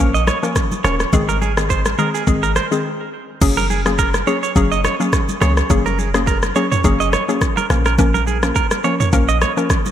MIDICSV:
0, 0, Header, 1, 5, 480
1, 0, Start_track
1, 0, Tempo, 571429
1, 949, Time_signature, 4, 2, 24, 8
1, 8328, End_track
2, 0, Start_track
2, 0, Title_t, "Clean electric guitar"
2, 0, Program_c, 0, 27
2, 121, Note_on_c, 0, 75, 73
2, 190, Note_off_c, 0, 75, 0
2, 229, Note_on_c, 0, 73, 80
2, 314, Note_off_c, 0, 73, 0
2, 709, Note_on_c, 0, 73, 75
2, 794, Note_off_c, 0, 73, 0
2, 1081, Note_on_c, 0, 70, 74
2, 1150, Note_off_c, 0, 70, 0
2, 1189, Note_on_c, 0, 68, 77
2, 1274, Note_off_c, 0, 68, 0
2, 1429, Note_on_c, 0, 72, 74
2, 1514, Note_off_c, 0, 72, 0
2, 1669, Note_on_c, 0, 70, 78
2, 1754, Note_off_c, 0, 70, 0
2, 1801, Note_on_c, 0, 68, 72
2, 1870, Note_off_c, 0, 68, 0
2, 2041, Note_on_c, 0, 70, 78
2, 2110, Note_off_c, 0, 70, 0
2, 2149, Note_on_c, 0, 72, 85
2, 2234, Note_off_c, 0, 72, 0
2, 3001, Note_on_c, 0, 70, 81
2, 3071, Note_off_c, 0, 70, 0
2, 3109, Note_on_c, 0, 68, 76
2, 3194, Note_off_c, 0, 68, 0
2, 3349, Note_on_c, 0, 70, 89
2, 3434, Note_off_c, 0, 70, 0
2, 3589, Note_on_c, 0, 73, 83
2, 3674, Note_off_c, 0, 73, 0
2, 3721, Note_on_c, 0, 73, 75
2, 3790, Note_off_c, 0, 73, 0
2, 3961, Note_on_c, 0, 75, 75
2, 4031, Note_off_c, 0, 75, 0
2, 4070, Note_on_c, 0, 73, 79
2, 4154, Note_off_c, 0, 73, 0
2, 4549, Note_on_c, 0, 73, 75
2, 4634, Note_off_c, 0, 73, 0
2, 4921, Note_on_c, 0, 70, 75
2, 5029, Note_off_c, 0, 70, 0
2, 5029, Note_on_c, 0, 68, 81
2, 5114, Note_off_c, 0, 68, 0
2, 5269, Note_on_c, 0, 70, 81
2, 5354, Note_off_c, 0, 70, 0
2, 5509, Note_on_c, 0, 73, 78
2, 5594, Note_off_c, 0, 73, 0
2, 5641, Note_on_c, 0, 73, 76
2, 5710, Note_off_c, 0, 73, 0
2, 5882, Note_on_c, 0, 75, 76
2, 5951, Note_off_c, 0, 75, 0
2, 5989, Note_on_c, 0, 73, 89
2, 6074, Note_off_c, 0, 73, 0
2, 6360, Note_on_c, 0, 70, 80
2, 6430, Note_off_c, 0, 70, 0
2, 6601, Note_on_c, 0, 70, 72
2, 6670, Note_off_c, 0, 70, 0
2, 6840, Note_on_c, 0, 70, 85
2, 6910, Note_off_c, 0, 70, 0
2, 6949, Note_on_c, 0, 68, 75
2, 7033, Note_off_c, 0, 68, 0
2, 7188, Note_on_c, 0, 70, 94
2, 7273, Note_off_c, 0, 70, 0
2, 7428, Note_on_c, 0, 73, 82
2, 7513, Note_off_c, 0, 73, 0
2, 7560, Note_on_c, 0, 73, 74
2, 7630, Note_off_c, 0, 73, 0
2, 7800, Note_on_c, 0, 75, 77
2, 7870, Note_off_c, 0, 75, 0
2, 7909, Note_on_c, 0, 73, 81
2, 7993, Note_off_c, 0, 73, 0
2, 8328, End_track
3, 0, Start_track
3, 0, Title_t, "Synth pluck"
3, 0, Program_c, 1, 84
3, 0, Note_on_c, 1, 53, 95
3, 0, Note_on_c, 1, 58, 88
3, 0, Note_on_c, 1, 61, 89
3, 0, Note_on_c, 1, 70, 104
3, 174, Note_off_c, 1, 53, 0
3, 175, Note_off_c, 1, 58, 0
3, 176, Note_off_c, 1, 61, 0
3, 176, Note_off_c, 1, 70, 0
3, 359, Note_on_c, 1, 53, 80
3, 360, Note_on_c, 1, 58, 70
3, 362, Note_on_c, 1, 61, 70
3, 364, Note_on_c, 1, 70, 87
3, 534, Note_off_c, 1, 53, 0
3, 535, Note_off_c, 1, 58, 0
3, 536, Note_off_c, 1, 61, 0
3, 537, Note_off_c, 1, 70, 0
3, 707, Note_on_c, 1, 53, 78
3, 709, Note_on_c, 1, 58, 74
3, 710, Note_on_c, 1, 61, 68
3, 712, Note_on_c, 1, 70, 82
3, 894, Note_off_c, 1, 53, 0
3, 895, Note_off_c, 1, 58, 0
3, 896, Note_off_c, 1, 61, 0
3, 897, Note_off_c, 1, 70, 0
3, 947, Note_on_c, 1, 51, 97
3, 949, Note_on_c, 1, 56, 92
3, 951, Note_on_c, 1, 60, 89
3, 952, Note_on_c, 1, 68, 107
3, 1134, Note_off_c, 1, 51, 0
3, 1135, Note_off_c, 1, 56, 0
3, 1136, Note_off_c, 1, 60, 0
3, 1137, Note_off_c, 1, 68, 0
3, 1319, Note_on_c, 1, 51, 74
3, 1320, Note_on_c, 1, 56, 68
3, 1322, Note_on_c, 1, 60, 71
3, 1324, Note_on_c, 1, 68, 82
3, 1642, Note_off_c, 1, 51, 0
3, 1643, Note_off_c, 1, 56, 0
3, 1644, Note_off_c, 1, 60, 0
3, 1644, Note_off_c, 1, 68, 0
3, 1666, Note_on_c, 1, 51, 80
3, 1668, Note_on_c, 1, 56, 75
3, 1670, Note_on_c, 1, 60, 70
3, 1671, Note_on_c, 1, 68, 88
3, 1890, Note_off_c, 1, 51, 0
3, 1891, Note_off_c, 1, 56, 0
3, 1892, Note_off_c, 1, 60, 0
3, 1893, Note_off_c, 1, 68, 0
3, 1906, Note_on_c, 1, 51, 94
3, 1908, Note_on_c, 1, 56, 85
3, 1909, Note_on_c, 1, 60, 85
3, 1911, Note_on_c, 1, 68, 100
3, 2094, Note_off_c, 1, 51, 0
3, 2095, Note_off_c, 1, 56, 0
3, 2095, Note_off_c, 1, 60, 0
3, 2096, Note_off_c, 1, 68, 0
3, 2279, Note_on_c, 1, 51, 77
3, 2281, Note_on_c, 1, 56, 74
3, 2282, Note_on_c, 1, 60, 71
3, 2284, Note_on_c, 1, 68, 90
3, 2388, Note_off_c, 1, 51, 0
3, 2389, Note_off_c, 1, 56, 0
3, 2390, Note_off_c, 1, 60, 0
3, 2391, Note_off_c, 1, 68, 0
3, 2866, Note_on_c, 1, 54, 92
3, 2868, Note_on_c, 1, 58, 89
3, 2870, Note_on_c, 1, 61, 88
3, 2871, Note_on_c, 1, 68, 102
3, 3208, Note_off_c, 1, 54, 0
3, 3209, Note_off_c, 1, 58, 0
3, 3210, Note_off_c, 1, 61, 0
3, 3211, Note_off_c, 1, 68, 0
3, 3239, Note_on_c, 1, 54, 74
3, 3240, Note_on_c, 1, 58, 70
3, 3242, Note_on_c, 1, 61, 68
3, 3244, Note_on_c, 1, 68, 80
3, 3414, Note_off_c, 1, 54, 0
3, 3415, Note_off_c, 1, 58, 0
3, 3416, Note_off_c, 1, 61, 0
3, 3417, Note_off_c, 1, 68, 0
3, 3587, Note_on_c, 1, 54, 78
3, 3589, Note_on_c, 1, 58, 70
3, 3590, Note_on_c, 1, 61, 72
3, 3592, Note_on_c, 1, 68, 84
3, 3774, Note_off_c, 1, 54, 0
3, 3775, Note_off_c, 1, 58, 0
3, 3776, Note_off_c, 1, 61, 0
3, 3777, Note_off_c, 1, 68, 0
3, 3827, Note_on_c, 1, 54, 94
3, 3829, Note_on_c, 1, 58, 87
3, 3831, Note_on_c, 1, 61, 84
3, 3832, Note_on_c, 1, 68, 103
3, 4169, Note_off_c, 1, 54, 0
3, 4169, Note_off_c, 1, 58, 0
3, 4170, Note_off_c, 1, 61, 0
3, 4171, Note_off_c, 1, 68, 0
3, 4199, Note_on_c, 1, 54, 77
3, 4201, Note_on_c, 1, 58, 73
3, 4203, Note_on_c, 1, 61, 75
3, 4204, Note_on_c, 1, 68, 87
3, 4374, Note_off_c, 1, 54, 0
3, 4375, Note_off_c, 1, 58, 0
3, 4376, Note_off_c, 1, 61, 0
3, 4377, Note_off_c, 1, 68, 0
3, 4547, Note_on_c, 1, 54, 78
3, 4548, Note_on_c, 1, 58, 73
3, 4550, Note_on_c, 1, 61, 71
3, 4552, Note_on_c, 1, 68, 84
3, 4734, Note_off_c, 1, 54, 0
3, 4735, Note_off_c, 1, 58, 0
3, 4736, Note_off_c, 1, 61, 0
3, 4736, Note_off_c, 1, 68, 0
3, 4786, Note_on_c, 1, 54, 93
3, 4788, Note_on_c, 1, 58, 89
3, 4790, Note_on_c, 1, 61, 87
3, 4792, Note_on_c, 1, 68, 105
3, 5128, Note_off_c, 1, 54, 0
3, 5129, Note_off_c, 1, 58, 0
3, 5130, Note_off_c, 1, 61, 0
3, 5131, Note_off_c, 1, 68, 0
3, 5158, Note_on_c, 1, 54, 73
3, 5160, Note_on_c, 1, 58, 69
3, 5161, Note_on_c, 1, 61, 66
3, 5163, Note_on_c, 1, 68, 84
3, 5334, Note_off_c, 1, 54, 0
3, 5334, Note_off_c, 1, 58, 0
3, 5335, Note_off_c, 1, 61, 0
3, 5336, Note_off_c, 1, 68, 0
3, 5507, Note_on_c, 1, 54, 78
3, 5508, Note_on_c, 1, 58, 76
3, 5510, Note_on_c, 1, 61, 70
3, 5512, Note_on_c, 1, 68, 86
3, 5694, Note_off_c, 1, 54, 0
3, 5695, Note_off_c, 1, 58, 0
3, 5696, Note_off_c, 1, 61, 0
3, 5696, Note_off_c, 1, 68, 0
3, 5747, Note_on_c, 1, 54, 93
3, 5749, Note_on_c, 1, 58, 84
3, 5750, Note_on_c, 1, 61, 82
3, 5752, Note_on_c, 1, 68, 101
3, 6088, Note_off_c, 1, 54, 0
3, 6089, Note_off_c, 1, 58, 0
3, 6090, Note_off_c, 1, 61, 0
3, 6091, Note_off_c, 1, 68, 0
3, 6119, Note_on_c, 1, 54, 80
3, 6121, Note_on_c, 1, 58, 71
3, 6122, Note_on_c, 1, 61, 74
3, 6124, Note_on_c, 1, 68, 87
3, 6294, Note_off_c, 1, 54, 0
3, 6295, Note_off_c, 1, 58, 0
3, 6296, Note_off_c, 1, 61, 0
3, 6296, Note_off_c, 1, 68, 0
3, 6467, Note_on_c, 1, 53, 75
3, 6469, Note_on_c, 1, 58, 72
3, 6471, Note_on_c, 1, 61, 74
3, 6472, Note_on_c, 1, 70, 83
3, 6654, Note_off_c, 1, 53, 0
3, 6655, Note_off_c, 1, 58, 0
3, 6656, Note_off_c, 1, 61, 0
3, 6657, Note_off_c, 1, 70, 0
3, 6707, Note_on_c, 1, 53, 98
3, 6709, Note_on_c, 1, 58, 85
3, 6710, Note_on_c, 1, 61, 89
3, 6712, Note_on_c, 1, 70, 101
3, 7048, Note_off_c, 1, 53, 0
3, 7049, Note_off_c, 1, 58, 0
3, 7050, Note_off_c, 1, 61, 0
3, 7051, Note_off_c, 1, 70, 0
3, 7079, Note_on_c, 1, 53, 75
3, 7080, Note_on_c, 1, 58, 69
3, 7082, Note_on_c, 1, 61, 70
3, 7084, Note_on_c, 1, 70, 83
3, 7254, Note_off_c, 1, 53, 0
3, 7255, Note_off_c, 1, 58, 0
3, 7256, Note_off_c, 1, 61, 0
3, 7257, Note_off_c, 1, 70, 0
3, 7427, Note_on_c, 1, 53, 78
3, 7428, Note_on_c, 1, 58, 73
3, 7430, Note_on_c, 1, 61, 71
3, 7432, Note_on_c, 1, 70, 87
3, 7614, Note_off_c, 1, 53, 0
3, 7615, Note_off_c, 1, 58, 0
3, 7616, Note_off_c, 1, 61, 0
3, 7616, Note_off_c, 1, 70, 0
3, 7666, Note_on_c, 1, 53, 92
3, 7668, Note_on_c, 1, 58, 91
3, 7669, Note_on_c, 1, 61, 87
3, 7671, Note_on_c, 1, 70, 103
3, 8008, Note_off_c, 1, 53, 0
3, 8009, Note_off_c, 1, 58, 0
3, 8010, Note_off_c, 1, 61, 0
3, 8010, Note_off_c, 1, 70, 0
3, 8039, Note_on_c, 1, 53, 79
3, 8040, Note_on_c, 1, 58, 75
3, 8042, Note_on_c, 1, 61, 72
3, 8043, Note_on_c, 1, 70, 85
3, 8214, Note_off_c, 1, 53, 0
3, 8215, Note_off_c, 1, 58, 0
3, 8215, Note_off_c, 1, 61, 0
3, 8216, Note_off_c, 1, 70, 0
3, 8328, End_track
4, 0, Start_track
4, 0, Title_t, "808-style bass"
4, 0, Program_c, 2, 38
4, 0, Note_on_c, 2, 34, 105
4, 255, Note_off_c, 2, 34, 0
4, 709, Note_on_c, 2, 27, 90
4, 880, Note_off_c, 2, 27, 0
4, 950, Note_on_c, 2, 32, 104
4, 1636, Note_off_c, 2, 32, 0
4, 1909, Note_on_c, 2, 32, 101
4, 2175, Note_off_c, 2, 32, 0
4, 2869, Note_on_c, 2, 30, 113
4, 3556, Note_off_c, 2, 30, 0
4, 3829, Note_on_c, 2, 30, 101
4, 4095, Note_off_c, 2, 30, 0
4, 4549, Note_on_c, 2, 37, 101
4, 4720, Note_off_c, 2, 37, 0
4, 4789, Note_on_c, 2, 30, 106
4, 5476, Note_off_c, 2, 30, 0
4, 5749, Note_on_c, 2, 30, 98
4, 6015, Note_off_c, 2, 30, 0
4, 6469, Note_on_c, 2, 34, 104
4, 7155, Note_off_c, 2, 34, 0
4, 7668, Note_on_c, 2, 34, 106
4, 7934, Note_off_c, 2, 34, 0
4, 8328, End_track
5, 0, Start_track
5, 0, Title_t, "Drums"
5, 123, Note_on_c, 9, 82, 50
5, 207, Note_off_c, 9, 82, 0
5, 229, Note_on_c, 9, 63, 79
5, 230, Note_on_c, 9, 82, 53
5, 231, Note_on_c, 9, 37, 85
5, 313, Note_off_c, 9, 63, 0
5, 314, Note_off_c, 9, 82, 0
5, 315, Note_off_c, 9, 37, 0
5, 363, Note_on_c, 9, 82, 54
5, 447, Note_off_c, 9, 82, 0
5, 466, Note_on_c, 9, 64, 67
5, 468, Note_on_c, 9, 82, 62
5, 469, Note_on_c, 9, 36, 97
5, 469, Note_on_c, 9, 37, 85
5, 550, Note_off_c, 9, 64, 0
5, 552, Note_off_c, 9, 82, 0
5, 553, Note_off_c, 9, 36, 0
5, 553, Note_off_c, 9, 37, 0
5, 601, Note_on_c, 9, 63, 78
5, 602, Note_on_c, 9, 82, 52
5, 685, Note_off_c, 9, 63, 0
5, 686, Note_off_c, 9, 82, 0
5, 710, Note_on_c, 9, 37, 87
5, 710, Note_on_c, 9, 64, 82
5, 711, Note_on_c, 9, 82, 55
5, 794, Note_off_c, 9, 37, 0
5, 794, Note_off_c, 9, 64, 0
5, 795, Note_off_c, 9, 82, 0
5, 838, Note_on_c, 9, 82, 44
5, 841, Note_on_c, 9, 37, 83
5, 922, Note_off_c, 9, 82, 0
5, 925, Note_off_c, 9, 37, 0
5, 947, Note_on_c, 9, 64, 79
5, 949, Note_on_c, 9, 36, 110
5, 949, Note_on_c, 9, 82, 80
5, 1031, Note_off_c, 9, 64, 0
5, 1033, Note_off_c, 9, 36, 0
5, 1033, Note_off_c, 9, 82, 0
5, 1084, Note_on_c, 9, 63, 76
5, 1084, Note_on_c, 9, 82, 46
5, 1168, Note_off_c, 9, 63, 0
5, 1168, Note_off_c, 9, 82, 0
5, 1191, Note_on_c, 9, 63, 70
5, 1191, Note_on_c, 9, 82, 51
5, 1275, Note_off_c, 9, 63, 0
5, 1275, Note_off_c, 9, 82, 0
5, 1321, Note_on_c, 9, 37, 91
5, 1321, Note_on_c, 9, 82, 52
5, 1405, Note_off_c, 9, 37, 0
5, 1405, Note_off_c, 9, 82, 0
5, 1428, Note_on_c, 9, 82, 67
5, 1430, Note_on_c, 9, 36, 86
5, 1512, Note_off_c, 9, 82, 0
5, 1514, Note_off_c, 9, 36, 0
5, 1557, Note_on_c, 9, 82, 55
5, 1560, Note_on_c, 9, 37, 90
5, 1564, Note_on_c, 9, 63, 53
5, 1641, Note_off_c, 9, 82, 0
5, 1644, Note_off_c, 9, 37, 0
5, 1648, Note_off_c, 9, 63, 0
5, 1667, Note_on_c, 9, 82, 45
5, 1751, Note_off_c, 9, 82, 0
5, 1804, Note_on_c, 9, 82, 56
5, 1888, Note_off_c, 9, 82, 0
5, 1908, Note_on_c, 9, 82, 77
5, 1909, Note_on_c, 9, 36, 109
5, 1992, Note_off_c, 9, 82, 0
5, 1993, Note_off_c, 9, 36, 0
5, 2042, Note_on_c, 9, 82, 48
5, 2126, Note_off_c, 9, 82, 0
5, 2149, Note_on_c, 9, 63, 76
5, 2150, Note_on_c, 9, 37, 82
5, 2150, Note_on_c, 9, 82, 53
5, 2233, Note_off_c, 9, 63, 0
5, 2234, Note_off_c, 9, 37, 0
5, 2234, Note_off_c, 9, 82, 0
5, 2283, Note_on_c, 9, 82, 52
5, 2367, Note_off_c, 9, 82, 0
5, 2867, Note_on_c, 9, 64, 77
5, 2868, Note_on_c, 9, 82, 76
5, 2869, Note_on_c, 9, 36, 115
5, 2869, Note_on_c, 9, 49, 93
5, 2951, Note_off_c, 9, 64, 0
5, 2952, Note_off_c, 9, 82, 0
5, 2953, Note_off_c, 9, 36, 0
5, 2953, Note_off_c, 9, 49, 0
5, 3003, Note_on_c, 9, 63, 74
5, 3004, Note_on_c, 9, 82, 47
5, 3087, Note_off_c, 9, 63, 0
5, 3088, Note_off_c, 9, 82, 0
5, 3111, Note_on_c, 9, 63, 71
5, 3111, Note_on_c, 9, 82, 50
5, 3195, Note_off_c, 9, 63, 0
5, 3195, Note_off_c, 9, 82, 0
5, 3241, Note_on_c, 9, 37, 87
5, 3241, Note_on_c, 9, 82, 52
5, 3325, Note_off_c, 9, 37, 0
5, 3325, Note_off_c, 9, 82, 0
5, 3348, Note_on_c, 9, 82, 69
5, 3350, Note_on_c, 9, 36, 89
5, 3432, Note_off_c, 9, 82, 0
5, 3434, Note_off_c, 9, 36, 0
5, 3477, Note_on_c, 9, 82, 57
5, 3480, Note_on_c, 9, 37, 85
5, 3483, Note_on_c, 9, 63, 53
5, 3561, Note_off_c, 9, 82, 0
5, 3564, Note_off_c, 9, 37, 0
5, 3567, Note_off_c, 9, 63, 0
5, 3587, Note_on_c, 9, 82, 46
5, 3671, Note_off_c, 9, 82, 0
5, 3724, Note_on_c, 9, 82, 58
5, 3808, Note_off_c, 9, 82, 0
5, 3828, Note_on_c, 9, 82, 75
5, 3829, Note_on_c, 9, 36, 105
5, 3912, Note_off_c, 9, 82, 0
5, 3913, Note_off_c, 9, 36, 0
5, 3962, Note_on_c, 9, 82, 49
5, 4046, Note_off_c, 9, 82, 0
5, 4069, Note_on_c, 9, 63, 81
5, 4069, Note_on_c, 9, 82, 52
5, 4070, Note_on_c, 9, 37, 83
5, 4153, Note_off_c, 9, 63, 0
5, 4153, Note_off_c, 9, 82, 0
5, 4154, Note_off_c, 9, 37, 0
5, 4203, Note_on_c, 9, 82, 51
5, 4287, Note_off_c, 9, 82, 0
5, 4305, Note_on_c, 9, 64, 64
5, 4308, Note_on_c, 9, 82, 66
5, 4309, Note_on_c, 9, 36, 96
5, 4309, Note_on_c, 9, 37, 86
5, 4389, Note_off_c, 9, 64, 0
5, 4392, Note_off_c, 9, 82, 0
5, 4393, Note_off_c, 9, 36, 0
5, 4393, Note_off_c, 9, 37, 0
5, 4441, Note_on_c, 9, 63, 77
5, 4442, Note_on_c, 9, 82, 55
5, 4525, Note_off_c, 9, 63, 0
5, 4526, Note_off_c, 9, 82, 0
5, 4549, Note_on_c, 9, 64, 86
5, 4550, Note_on_c, 9, 37, 89
5, 4551, Note_on_c, 9, 82, 56
5, 4633, Note_off_c, 9, 64, 0
5, 4634, Note_off_c, 9, 37, 0
5, 4635, Note_off_c, 9, 82, 0
5, 4678, Note_on_c, 9, 82, 44
5, 4681, Note_on_c, 9, 37, 86
5, 4762, Note_off_c, 9, 82, 0
5, 4765, Note_off_c, 9, 37, 0
5, 4786, Note_on_c, 9, 64, 79
5, 4788, Note_on_c, 9, 82, 83
5, 4789, Note_on_c, 9, 36, 115
5, 4870, Note_off_c, 9, 64, 0
5, 4872, Note_off_c, 9, 82, 0
5, 4873, Note_off_c, 9, 36, 0
5, 4923, Note_on_c, 9, 63, 71
5, 4923, Note_on_c, 9, 82, 48
5, 5007, Note_off_c, 9, 63, 0
5, 5007, Note_off_c, 9, 82, 0
5, 5030, Note_on_c, 9, 63, 72
5, 5031, Note_on_c, 9, 82, 51
5, 5114, Note_off_c, 9, 63, 0
5, 5115, Note_off_c, 9, 82, 0
5, 5160, Note_on_c, 9, 82, 53
5, 5161, Note_on_c, 9, 37, 92
5, 5244, Note_off_c, 9, 82, 0
5, 5245, Note_off_c, 9, 37, 0
5, 5267, Note_on_c, 9, 82, 70
5, 5269, Note_on_c, 9, 36, 86
5, 5351, Note_off_c, 9, 82, 0
5, 5353, Note_off_c, 9, 36, 0
5, 5397, Note_on_c, 9, 82, 56
5, 5399, Note_on_c, 9, 37, 89
5, 5403, Note_on_c, 9, 63, 54
5, 5481, Note_off_c, 9, 82, 0
5, 5483, Note_off_c, 9, 37, 0
5, 5487, Note_off_c, 9, 63, 0
5, 5506, Note_on_c, 9, 82, 47
5, 5590, Note_off_c, 9, 82, 0
5, 5643, Note_on_c, 9, 82, 58
5, 5646, Note_on_c, 9, 45, 90
5, 5727, Note_off_c, 9, 82, 0
5, 5730, Note_off_c, 9, 45, 0
5, 5747, Note_on_c, 9, 82, 76
5, 5749, Note_on_c, 9, 36, 110
5, 5831, Note_off_c, 9, 82, 0
5, 5833, Note_off_c, 9, 36, 0
5, 5882, Note_on_c, 9, 82, 52
5, 5966, Note_off_c, 9, 82, 0
5, 5989, Note_on_c, 9, 63, 82
5, 5989, Note_on_c, 9, 82, 54
5, 5990, Note_on_c, 9, 37, 83
5, 6073, Note_off_c, 9, 63, 0
5, 6073, Note_off_c, 9, 82, 0
5, 6074, Note_off_c, 9, 37, 0
5, 6123, Note_on_c, 9, 82, 52
5, 6207, Note_off_c, 9, 82, 0
5, 6226, Note_on_c, 9, 64, 65
5, 6228, Note_on_c, 9, 82, 67
5, 6229, Note_on_c, 9, 36, 100
5, 6229, Note_on_c, 9, 37, 87
5, 6310, Note_off_c, 9, 64, 0
5, 6312, Note_off_c, 9, 82, 0
5, 6313, Note_off_c, 9, 36, 0
5, 6313, Note_off_c, 9, 37, 0
5, 6361, Note_on_c, 9, 63, 78
5, 6361, Note_on_c, 9, 82, 55
5, 6445, Note_off_c, 9, 63, 0
5, 6445, Note_off_c, 9, 82, 0
5, 6469, Note_on_c, 9, 37, 94
5, 6469, Note_on_c, 9, 64, 88
5, 6470, Note_on_c, 9, 82, 56
5, 6553, Note_off_c, 9, 37, 0
5, 6553, Note_off_c, 9, 64, 0
5, 6554, Note_off_c, 9, 82, 0
5, 6597, Note_on_c, 9, 82, 48
5, 6600, Note_on_c, 9, 37, 86
5, 6681, Note_off_c, 9, 82, 0
5, 6684, Note_off_c, 9, 37, 0
5, 6707, Note_on_c, 9, 64, 81
5, 6707, Note_on_c, 9, 82, 78
5, 6709, Note_on_c, 9, 36, 116
5, 6791, Note_off_c, 9, 64, 0
5, 6791, Note_off_c, 9, 82, 0
5, 6793, Note_off_c, 9, 36, 0
5, 6842, Note_on_c, 9, 63, 77
5, 6842, Note_on_c, 9, 82, 46
5, 6926, Note_off_c, 9, 63, 0
5, 6926, Note_off_c, 9, 82, 0
5, 6949, Note_on_c, 9, 82, 51
5, 6950, Note_on_c, 9, 63, 66
5, 7033, Note_off_c, 9, 82, 0
5, 7034, Note_off_c, 9, 63, 0
5, 7080, Note_on_c, 9, 37, 92
5, 7080, Note_on_c, 9, 82, 56
5, 7164, Note_off_c, 9, 37, 0
5, 7164, Note_off_c, 9, 82, 0
5, 7186, Note_on_c, 9, 82, 70
5, 7189, Note_on_c, 9, 36, 85
5, 7270, Note_off_c, 9, 82, 0
5, 7273, Note_off_c, 9, 36, 0
5, 7316, Note_on_c, 9, 82, 58
5, 7318, Note_on_c, 9, 37, 88
5, 7323, Note_on_c, 9, 63, 54
5, 7400, Note_off_c, 9, 82, 0
5, 7402, Note_off_c, 9, 37, 0
5, 7407, Note_off_c, 9, 63, 0
5, 7425, Note_on_c, 9, 82, 46
5, 7509, Note_off_c, 9, 82, 0
5, 7562, Note_on_c, 9, 82, 59
5, 7565, Note_on_c, 9, 45, 94
5, 7646, Note_off_c, 9, 82, 0
5, 7649, Note_off_c, 9, 45, 0
5, 7666, Note_on_c, 9, 82, 76
5, 7668, Note_on_c, 9, 36, 107
5, 7750, Note_off_c, 9, 82, 0
5, 7752, Note_off_c, 9, 36, 0
5, 7801, Note_on_c, 9, 82, 53
5, 7885, Note_off_c, 9, 82, 0
5, 7908, Note_on_c, 9, 63, 81
5, 7909, Note_on_c, 9, 37, 84
5, 7909, Note_on_c, 9, 82, 52
5, 7992, Note_off_c, 9, 63, 0
5, 7993, Note_off_c, 9, 37, 0
5, 7993, Note_off_c, 9, 82, 0
5, 8042, Note_on_c, 9, 82, 53
5, 8126, Note_off_c, 9, 82, 0
5, 8145, Note_on_c, 9, 64, 68
5, 8147, Note_on_c, 9, 82, 67
5, 8148, Note_on_c, 9, 36, 102
5, 8148, Note_on_c, 9, 37, 89
5, 8229, Note_off_c, 9, 64, 0
5, 8231, Note_off_c, 9, 82, 0
5, 8232, Note_off_c, 9, 36, 0
5, 8232, Note_off_c, 9, 37, 0
5, 8280, Note_on_c, 9, 63, 79
5, 8280, Note_on_c, 9, 82, 53
5, 8328, Note_off_c, 9, 63, 0
5, 8328, Note_off_c, 9, 82, 0
5, 8328, End_track
0, 0, End_of_file